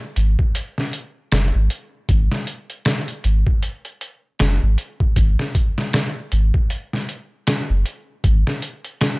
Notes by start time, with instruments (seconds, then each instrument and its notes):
0.16 sub bass G#1, closed hi-hat
0.39 kick
0.55 closed hi-hat
0.78 snare
0.93 closed hi-hat
1.32 sub bass F#1, snare, closed hi-hat
1.55 sub bass G#1
1.70 closed hi-hat
2.09 sub bass G#1, kick, closed hi-hat
2.32 snare
2.47 closed hi-hat
2.70 closed hi-hat
2.85 snare, closed hi-hat
3.08 closed hi-hat
3.24 sub bass G#1, closed hi-hat
3.47 kick
3.63 closed hi-hat
3.85 closed hi-hat
4.01 closed hi-hat
4.39 sub bass F#1, snare, closed hi-hat
4.63 sub bass G#1
4.78 closed hi-hat
5.00 kick
5.16 sub bass G#1, kick, closed hi-hat
5.39 snare
5.55 kick, closed hi-hat
5.78 snare
5.93 snare, closed hi-hat
6.32 sub bass G#1, closed hi-hat
6.54 kick
6.70 closed hi-hat
6.93 snare
7.09 closed hi-hat
7.47 snare, closed hi-hat
7.70 sub bass F#1
7.86 closed hi-hat
8.24 sub bass G#1, kick, closed hi-hat
8.47 snare
8.62 closed hi-hat
8.85 closed hi-hat
9.01 snare, closed hi-hat